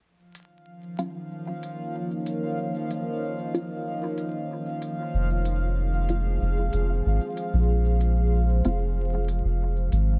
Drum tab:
HH |-x-x-x-x|-x-x-x-x|-x-x-x-x|-x-x-x-x|